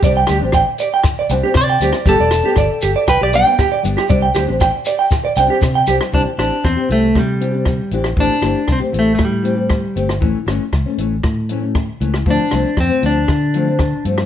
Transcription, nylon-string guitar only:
\new Staff \with { instrumentName = "Nylon-string guitar" } { \time 4/4 \key c \major \tempo 4 = 118 <g c' d'>16 r16 <g d'>16 <c' d'>16 r4. <g c' d'>16 <c' d'>16 r8 <g c' d'>16 r16 | <g b d'>16 r16 d'16 <b d'>16 r4. <g b d'>16 <b d'>16 r8 <g b d'>16 r16 | <g c' d'>16 r16 <g c' d'>16 <c' d'>16 r4. <g c' d'>16 <c' d'>16 r8 <g c' d'>16 r16 | <e c' d' g'>16 r16 <e c' d' g'>16 r8 <c' d' g'>16 <e c' d' g'>16 r8. <e c' d' g'>16 <c' d' g'>16 r8 <e c' d' g'>16 r16 |
<e a c' g'>16 r16 <e a c' g'>16 r8 <a c' g'>16 <e a c' g'>16 r8. <e a c' g'>16 <a c' g'>16 r8 <a c' g'>16 r16 | <e a cis'>16 r16 <e a cis'>16 r8 <a cis'>16 <e a cis'>16 r8. <e a cis'>16 <a cis'>16 r8 <e a cis'>16 r16 | <f a c'>16 r16 <f a c'>16 r8 <a c'>16 <f a c'>16 r8. <f a c'>16 <a c'>16 r8 <f a c'>16 r16 | }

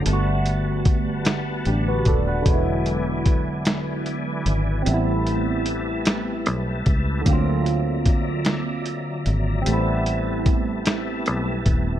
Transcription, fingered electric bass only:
\new Staff \with { instrumentName = "Fingered electric bass" } { \clef bass \time 6/8 \key a \dorian \tempo 4. = 50 g,,2 a,,8 dis,,8 | e,,2~ e,,8 gis,,8 | a,,2 b,,8 cis,8 | d,2~ d,8 gis,,8 |
a,,2 b,,8 dis,,8 | }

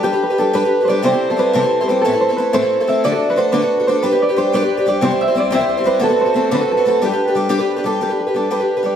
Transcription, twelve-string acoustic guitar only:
\new Staff \with { instrumentName = "Twelve-string acoustic guitar" } { \time 6/8 \key g \major \tempo 4. = 120 <g d' g' b'>16 <d' g' b'>8 <d' g' b'>16 <g d' g' b'>8 <g d' g' b'>16 <d' g' b'>8 <d' g' b'>16 <g d' g' b'>8 | <c e g c' e' c''>16 <g c' e' c''>8 <g c' e' c''>16 <g c' e' c''>8 <c e g c' e' c''>16 <g c' e' c''>8 <g c' e' c''>16 <g c' e' c''>8 | <a, e a c' e' a'>16 <a c' e' a'>8 <a c' e' a'>16 <a c' e' a'>8 <a, e a c' e' a'>16 <a c' e' a'>8 <a c' e' a'>16 <a c' e' a'>8 | <d a d' fis' a'>16 <d' fis' a'>8 <d' fis' a'>16 <a d' fis' a'>8 <d a d' fis' a'>16 <d' fis' a'>8 <d' fis' a'>16 <a d' fis' a'>8 |
<g d' g' b'>16 <d' g' b'>8 <d' g' b'>16 <g d' g' b'>8 <g d' g' b'>16 <d' g' b'>8 <d' g' b'>16 <g d' g' b'>8 | <c e g c' e' c''>16 <g c' e' c''>8 <g c' e' c''>16 <g c' e' c''>8 <c e g c' e' c''>16 <g c' e' c''>8 <g c' e' c''>16 <g c' e' c''>8 | <d a c' fis' a'>16 <c' fis' a'>8 <c' fis' a'>16 <a c' fis' a'>8 <d a c' fis' a'>16 <c' fis' a'>8 <c' fis' a'>16 <a c' fis' a'>8 | <g d' g' b'>16 <d' g' b'>8 <d' g' b'>16 <g d' g' b'>8 <g d' g' b'>16 <d' g' b'>8 <d' g' b'>16 <g d' g' b'>8 |
<g d' g' b'>16 <d' g' b'>8 <d' g' b'>16 <g d' g' b'>8 <g d' g' b'>16 <d' g' b'>8 <d' g' b'>16 <g d' g' b'>8 | }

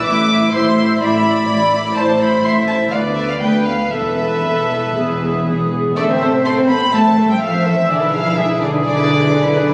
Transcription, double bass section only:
\new Staff \with { instrumentName = "Double bass section" } { \clef bass \time 4/4 \key a \minor \tempo 4 = 125 a,,4 a,,4 a,,4 a,,4 | a,,4 a,,4 d,4 d,4 | e,,4 e,,4 e,,4 e,,4 | a,,1 |
b,,1 | }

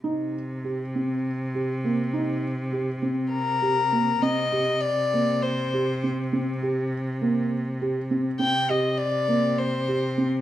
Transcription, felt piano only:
\new Staff \with { instrumentName = "Felt piano" } { \time 7/8 \key c \minor \tempo 4 = 101 ees'4 g'8 c'4 g'8 bes8 | ees'4 g'8 c'4 g'8 bes8 | c'8 g'4 bes4 g'8 c'8 | c'8 g'4 bes4 g'8 c'8 |
c'8 g'4 bes4 g'8 c'8 | }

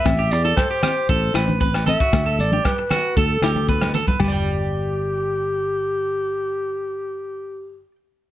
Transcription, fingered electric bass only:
\new Staff \with { instrumentName = "Fingered electric bass" } { \clef bass \time 4/4 \key g \major \tempo 4 = 116 a,,8 e,8 r4 a,,8 a,,4. | d,8 a,,8 r4 d,8 d,4. | g,,1~ | g,,1 | }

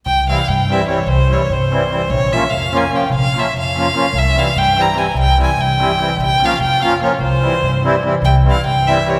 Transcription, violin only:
\new Staff \with { instrumentName = "Violin" } { \time 5/8 \tempo 4 = 147 g''8 f''8 g''8 e''8 des''8 | c''8 des''8 c''4. | des''8 e''8 f''8 aes''8 g''8 | f''8 e''8 f''4. |
e''8 f''8 g''8 bes''8 aes''8 | g''8 aes''8 g''4. | g''8 f''8 g''8 f''8 des''8 | c''2 r8 |
g''8 f''8 g''8 e''8 des''8 | }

